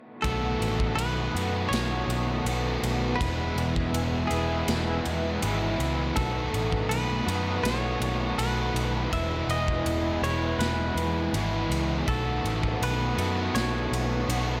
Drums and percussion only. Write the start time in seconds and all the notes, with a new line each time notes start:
0.24 kick, ride
0.62 ride
0.80 kick
0.99 ride
1.37 ride
1.73 snare, ride
2.10 ride
2.46 ride
2.84 ride
3.21 kick, ride
3.58 ride
3.76 kick
3.94 ride
4.31 ride
4.68 snare, ride
5.05 ride
5.42 ride
5.80 ride
6.16 kick, ride
6.54 ride
6.72 kick
6.91 ride
7.28 ride
7.65 snare, ride
8.02 ride
8.39 ride
8.76 ride
9.13 kick, ride
9.50 ride
9.68 kick
9.86 ride
10.24 ride
10.61 snare, ride
10.97 ride
11.34 ride
11.72 ride
12.08 kick, ride
12.46 ride
12.63 kick
12.83 ride
13.19 ride
13.55 snare, ride
13.93 ride
14.30 ride